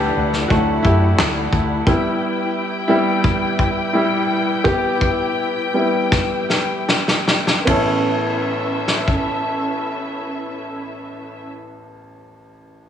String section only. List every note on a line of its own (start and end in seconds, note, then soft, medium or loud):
0.00 7.64 E4 medium
0.00 1.83 A4 medium
0.00 1.83 D5 medium
0.00 1.83 F#5 medium
1.88 7.64 G4 medium
1.88 7.64 B4 medium
1.88 7.64 G5 medium
7.68 11.48 C#4 medium
7.68 11.48 E4 medium
7.68 11.48 A4 medium
7.68 11.48 B4 medium
7.68 11.47 E5 medium